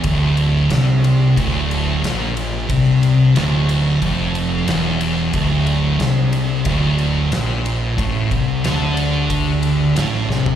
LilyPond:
<<
  \new Staff \with { instrumentName = "Distorted electric guitar" } { \clef bass \time 4/4 \key d \minor \tempo 4 = 91 d,4 c4 d,4 bes,4 | c4 d,4 f,4 e,4 | d,4 c4 d,4 bes,4 | a,8 c8 d2 a,8 c8 | }
  \new Staff \with { instrumentName = "Distorted electric guitar" } { \clef bass \time 4/4 \key d \minor d,4 c4 d,4 bes,4 | c4 d,4 f,4 e,4 | d,4 c4 d,4 bes,4 | a,8 c8 d2 a,8 c8 | }
  \new Staff \with { instrumentName = "Fingered electric bass" } { \clef bass \time 4/4 \key d \minor d,,4 c,4 d,,4 bes,,4 | c,4 d,,4 f,,4 e,,4 | d,,4 c,4 d,,4 bes,,4 | a,,8 c,8 d,2 a,,8 c,8 | }
  \new DrumStaff \with { instrumentName = "Drums" } \drummode { \time 4/4 <bd cymr>8 cymr8 <cymr sn>8 cymr8 <bd cymr>8 cymr8 <cymr sn>8 cymr8 | <bd cymr>8 cymr8 <cymr sn>8 cymr8 <bd cymr>8 cymr8 <cymr sn>8 cymr8 | <bd cymr>8 cymr8 <cymr sn>8 cymr8 <bd cymr>8 cymr8 <cymr sn>8 cymr8 | <bd cymr>8 <bd cymr>8 <cymr sn>8 cymr8 <bd cymr>8 cymr8 <cymr sn>8 sn16 tomfh16 | }
>>